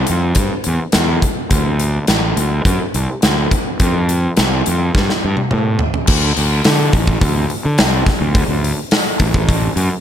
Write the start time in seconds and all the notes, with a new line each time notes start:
0.07 F2, closed hi-hat
0.35 G2, kick, closed hi-hat
0.64 E2, closed hi-hat
0.92 E2, snare, closed hi-hat
1.22 kick, closed hi-hat
1.51 D2, kick, closed hi-hat
1.79 closed hi-hat
2.07 A1, snare, closed hi-hat
2.37 D2, closed hi-hat
2.65 F#2, kick, closed hi-hat
2.94 C2, closed hi-hat
3.22 D2, snare, closed hi-hat
3.51 kick, closed hi-hat
3.80 F2, kick, closed hi-hat
4.09 closed hi-hat
4.37 C2, snare, closed hi-hat
4.66 F2, closed hi-hat
4.95 G2, kick, snare
5.09 snare
5.25 G2
5.37 high tom
5.51 A2, mid tom
5.79 floor tom
5.94 floor tom
6.07 D2, kick, crash
6.37 D2, open hi-hat
6.64 D3, snare, open hi-hat
6.93 A1, kick, open hi-hat
7.07 kick
7.21 D2, kick, open hi-hat
7.50 open hi-hat
7.65 D3
7.78 C2, snare, open hi-hat
8.06 kick, snare, open hi-hat
8.21 D2
8.35 kick, open hi-hat
8.48 D2
8.64 open hi-hat
8.91 snare, open hi-hat
9.20 A1, kick, open hi-hat
9.34 kick
9.49 kick, open hi-hat
9.76 F#2, open hi-hat